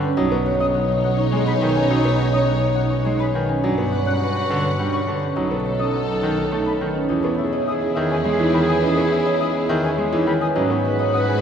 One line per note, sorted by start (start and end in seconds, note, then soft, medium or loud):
0.00 0.22 C#4 medium
0.00 0.19 G4 medium
0.00 1.45 B4 loud
0.00 0.30 C#5 medium
0.00 0.19 D5 medium
0.00 0.44 F#5 medium
0.00 0.19 G5 medium
0.17 3.48 B1 medium
0.17 0.36 F#3 medium
0.17 3.45 D#4 medium
0.17 0.36 D#4 medium
0.17 3.45 C#5 medium
0.17 0.59 D#5 loud
0.32 0.50 B3 medium
0.32 1.17 C#5 medium
0.46 0.65 C#5 medium
0.46 0.73 F#5 medium
0.60 0.79 C#4 medium
0.60 1.89 D#5 medium
0.60 0.66 D#6 medium
0.74 1.03 F#5 medium
1.04 2.17 F#5 medium
1.18 2.03 C#5 medium
1.32 1.52 G#3 medium
1.32 1.51 D#4 medium
1.32 1.60 G#4 medium
1.46 3.18 B4 medium
1.46 1.53 B5 medium
1.62 1.80 D#3 medium
1.62 3.03 G#4 medium
1.62 1.80 B4 medium
1.76 1.95 C#4 medium
1.76 3.47 G#5 medium
1.90 2.09 F#3 medium
1.90 2.09 D#4 medium
1.90 2.32 D#5 medium
2.04 2.24 B3 medium
2.04 2.89 C#5 medium
2.18 2.38 C#5 medium
2.18 2.46 F#5 medium
2.33 2.52 C#4 medium
2.33 3.65 D#5 medium
2.33 2.40 D#6 medium
2.47 2.74 F#5 medium
2.75 3.90 F#5 medium
2.90 3.65 C#5 medium
3.05 3.25 G#3 medium
3.05 3.25 D#4 medium
3.05 3.33 G#4 medium
3.19 4.91 B4 medium
3.19 3.26 B5 medium
3.34 3.54 D#3 medium
3.34 3.65 G#4 medium
3.34 3.53 B4 medium
3.48 3.68 C#4 medium
3.48 3.65 G#5 medium
3.63 5.21 G2 medium
3.63 3.82 F#3 medium
3.63 3.82 D4 medium
3.63 5.18 F#4 medium
3.63 5.18 B4 medium
3.63 4.05 D5 medium
3.63 5.18 F#5 medium
3.77 3.97 B3 medium
3.77 4.63 C#5 medium
3.91 4.11 C#5 medium
3.91 4.19 F#5 medium
4.06 4.25 C#4 medium
4.06 5.38 D5 medium
4.06 4.13 F#6 medium
4.20 4.48 F#5 medium
4.35 4.77 G4 medium
4.49 4.69 D3 medium
4.49 5.63 F#5 medium
4.64 5.39 C#5 medium
4.78 4.98 G3 medium
4.78 4.98 D4 medium
4.78 5.05 G4 medium
4.92 6.64 B4 medium
4.92 5.00 C#6 medium
5.07 5.27 D3 medium
5.07 5.38 G4 medium
5.07 5.27 B4 medium
5.21 5.41 C#4 medium
5.21 5.39 G5 medium
5.36 6.94 B1 medium
5.36 5.55 F#3 medium
5.36 5.55 D#4 medium
5.36 6.91 D#4 medium
5.36 6.91 A4 medium
5.36 5.78 D#5 medium
5.50 5.70 B3 medium
5.50 6.36 C#5 medium
5.65 5.84 C#5 medium
5.65 5.92 F#5 medium
5.79 5.99 C#4 medium
5.79 7.07 D#5 medium
5.79 5.86 D#6 medium
5.93 6.20 F#5 medium
6.07 6.50 A4 medium
6.22 6.42 D#3 medium
6.22 7.11 F#5 medium
6.37 7.12 C#5 medium
6.51 6.71 A3 medium
6.51 6.71 D#4 medium
6.51 6.79 A4 medium
6.65 8.38 B4 medium
6.65 6.73 B5 medium
6.80 7.00 D#3 medium
6.80 7.12 A4 medium
6.80 7.00 B4 medium
6.94 7.09 C#4 medium
6.94 7.12 A5 medium
7.09 10.40 E2 medium
7.09 7.29 E3 medium
7.09 7.29 C#4 medium
7.09 10.38 E4 medium
7.09 10.38 G#4 medium
7.09 7.31 G#4 soft
7.09 7.51 D#5 medium
7.23 7.43 B3 medium
7.23 8.09 C#5 medium
7.38 7.61 G#4 soft
7.38 7.66 E5 medium
7.52 7.72 C#5 medium
7.52 8.82 D#5 medium
7.67 7.86 C#4 medium
7.67 7.91 G#4 medium
7.67 7.94 E5 medium
7.67 7.74 D#6 medium
7.81 8.23 G#4 medium
7.81 8.01 G#4 medium
7.96 8.15 D#3 medium
7.96 9.10 E5 medium
8.01 8.21 G#4 medium
8.10 8.96 C#5 medium
8.10 8.17 G#5 medium
8.24 8.44 G#3 medium
8.24 8.53 G#4 medium
8.24 8.44 G#4 medium
8.31 8.52 G#4 medium
8.39 8.58 E3 medium
8.39 8.58 D#4 medium
8.39 10.11 B4 medium
8.54 8.73 D#3 medium
8.54 9.53 G#4 medium
8.54 8.60 B5 medium
8.60 8.82 G#4 medium
8.68 8.87 B4 medium
8.68 10.40 G#5 medium
8.68 8.75 D#6 medium
8.83 9.01 E3 medium
8.83 9.01 C#4 medium
8.83 9.25 D#5 medium
8.91 9.12 G#4 medium
8.97 9.16 B3 medium
8.97 9.16 D#4 medium
8.97 9.82 C#5 medium
9.11 9.39 E5 medium
9.21 9.42 G#4 medium
9.26 9.45 C#5 medium
9.26 10.54 D#5 medium
9.40 9.59 C#4 medium
9.40 9.68 E5 medium
9.40 9.47 D#6 medium
9.51 9.72 G#4 medium
9.51 9.97 G#4 medium
9.51 9.74 G#4 medium
9.69 9.88 D#3 medium
9.69 10.58 E5 medium
9.82 10.03 G#4 medium
9.82 10.58 C#5 medium
9.82 9.90 G#5 medium
9.98 10.17 G#3 medium
9.98 10.17 G#4 medium
9.98 10.26 G#4 medium
10.12 10.31 E3 medium
10.12 10.31 D#4 medium
10.12 10.33 G#4 soft
10.12 11.41 B4 medium
10.27 10.46 D#3 medium
10.27 11.28 G#4 medium
10.27 10.33 B5 medium
10.41 10.60 B4 medium
10.41 11.41 G#5 medium
10.41 10.47 D#6 medium
10.55 11.41 G#2 medium
10.55 10.75 F#3 medium
10.55 10.74 C#4 medium
10.55 11.41 F#4 medium
10.55 11.41 B4 medium
10.55 10.77 B4 soft
10.55 10.99 D#5 loud
10.70 10.89 B3 medium
10.70 11.41 C#5 medium
10.85 11.07 B4 medium
10.85 11.13 F#5 medium
10.99 11.18 C#5 medium
10.99 11.41 D#5 medium
11.14 11.32 C#4 medium
11.14 11.37 B4 medium
11.14 11.41 F#5 medium
11.14 11.20 D#6 medium
11.28 11.41 G#4 medium